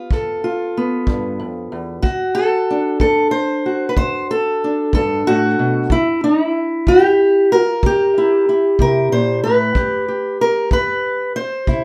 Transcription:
0.00 0.76 B3 medium
0.00 0.43 F4 soft
0.00 0.12 G4 medium
0.11 0.70 G2 medium
0.11 2.01 A4 medium
0.11 kick medium
0.44 2.01 F4 medium
0.77 2.01 B3 medium
1.07 1.40 G2 medium
1.07 kick medium
1.40 1.72 F2 medium
1.72 2.03 E2 medium
2.02 2.62 D2 medium
2.02 3.00 F#4 medium
2.02 kick medium
2.35 3.00 A4 medium
2.71 4.62 D4 soft
3.00 3.59 D2 medium
3.00 3.31 A4 medium
3.00 kick medium
3.31 3.89 C5 medium
3.66 5.26 F#4 soft
3.89 3.97 B4 medium
3.97 4.56 D2 medium
3.97 4.29 C5 loud
3.97 kick medium
4.31 4.93 A4 medium
4.64 5.88 D4 soft
4.93 5.26 G2 medium
4.93 5.90 A4 medium
4.93 kick medium
5.27 5.59 A2 medium
5.27 5.91 F#4 medium
5.59 5.91 B2 medium
5.90 6.49 C3 medium
5.90 6.23 E4 medium
5.90 kick medium
6.24 6.44 D#4 medium
6.44 7.51 E4 medium
6.87 7.45 C3 medium
6.87 7.60 G4 medium
6.87 kick medium
7.52 8.48 A#4 loud
7.60 7.84 F4 medium
7.83 8.41 C3 medium
7.83 9.45 G4 medium
7.83 kick medium
8.18 8.48 E4 soft
8.49 9.73 E4 soft
8.79 9.12 C3 medium
8.79 9.12 A#4 loud
8.79 kick medium
9.12 9.44 A#2 medium
9.12 9.43 C5 medium
9.44 9.75 A2 medium
9.44 10.40 B4 medium
9.75 10.33 G2 medium
9.75 10.07 G4 soft
9.75 kick medium
10.08 11.65 G4 soft
10.41 10.73 A#4 medium
10.71 11.30 G2 medium
10.71 11.35 B4 medium
10.71 kick medium
11.36 11.84 C5 medium
11.67 11.84 C3 medium
11.67 11.84 E4 soft
11.67 kick medium

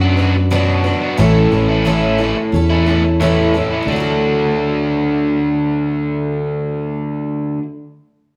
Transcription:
0.00 0.92 F#2 medium
0.00 0.18 F#3 medium
0.00 0.19 D4 medium
0.00 0.20 D4 medium
0.00 0.18 F#4 medium
0.00 0.21 F#4 medium
0.00 0.16 B4 medium
0.05 0.19 B3 soft
0.17 0.35 F#3 medium
0.17 0.35 B3 medium
0.17 0.50 D4 soft
0.17 0.35 D4 medium
0.17 0.51 F#4 medium
0.17 0.51 B4 soft
0.22 0.35 F#4 medium
0.36 muted overdriven electric guitar stroke soft
0.51 0.85 B2 medium
0.51 1.17 B2 medium
0.51 0.85 F#3 medium
0.51 1.17 F#3 medium
0.51 1.03 B3 medium
0.51 0.85 D4 medium
0.51 1.02 D4 medium
0.51 0.85 F#4 medium
0.51 0.83 B4 medium
0.55 1.00 F#4 medium
0.84 1.18 D4 soft
0.84 1.19 F#4 soft
0.84 1.18 B4 medium
1.01 1.18 B3 medium
1.01 1.17 D4 medium
1.01 1.17 F#4 medium
1.17 1.46 A1 medium
1.17 1.52 A2 medium
1.17 1.84 A2 medium
1.17 1.52 E3 medium
1.17 1.85 E3 medium
1.17 1.52 A3 medium
1.17 1.71 A3 medium
1.17 1.52 C#4 medium
1.17 1.69 C#4 medium
1.17 1.51 E4 medium
1.17 1.50 A4 medium
1.22 1.67 E4 medium
1.52 2.33 A1 medium
1.52 1.85 A3 soft
1.52 1.85 C#4 soft
1.52 1.86 E4 soft
1.52 1.86 A4 soft
1.68 1.86 A3 soft
1.68 1.87 C#4 medium
1.68 1.87 E4 medium
1.85 2.19 A2 medium
1.85 2.53 A2 medium
1.85 2.19 E3 medium
1.85 2.18 E3 medium
1.85 2.20 A3 medium
1.85 2.19 A3 medium
1.85 2.19 C#4 medium
1.85 2.21 C#4 medium
1.85 2.18 E4 medium
1.85 2.22 E4 medium
1.85 2.17 A4 medium
2.18 2.37 E3 medium
2.18 2.36 A3 medium
2.18 2.51 A3 soft
2.18 2.53 C#4 soft
2.18 2.36 C#4 medium
2.18 2.53 E4 soft
2.18 2.53 A4 soft
2.23 2.36 E4 medium
2.37 muted overdriven electric guitar stroke soft
2.52 3.60 E2 medium
2.52 2.86 A3 medium
2.52 2.87 C#4 medium
2.52 2.86 E4 medium
2.52 2.85 A4 medium
2.70 2.86 A3 soft
2.70 2.88 C#4 medium
2.70 2.89 E4 medium
2.86 3.04 E3 medium
2.86 3.04 A3 medium
2.86 3.20 A3 soft
2.86 3.03 C#4 medium
2.86 3.21 C#4 soft
2.86 3.21 E4 soft
2.86 3.03 E4 medium
2.86 3.20 A4 soft
3.04 muted overdriven electric guitar stroke soft
3.20 3.86 A2 medium
3.20 3.54 A2 medium
3.20 3.54 E3 medium
3.20 3.86 E3 medium
3.20 3.55 A3 medium
3.20 3.73 A3 medium
3.20 3.55 C#4 medium
3.20 3.71 C#4 medium
3.20 3.54 E4 medium
3.20 3.69 E4 medium
3.20 3.53 A4 medium
3.54 3.88 A3 soft
3.54 3.89 C#4 soft
3.54 3.88 E4 soft
3.54 3.88 A4 medium
3.71 3.87 A3 soft
3.71 3.86 C#4 medium
3.71 3.86 E4 medium
3.83 7.55 D3 medium
3.87 7.55 D2 medium
3.87 7.59 D3 medium
3.87 7.60 F#3 medium
3.87 7.60 A3 medium
3.87 7.62 D4 medium
3.91 7.64 A3 medium
3.91 7.63 F#4 medium
3.96 7.68 F#4 medium
4.00 7.72 A4 medium

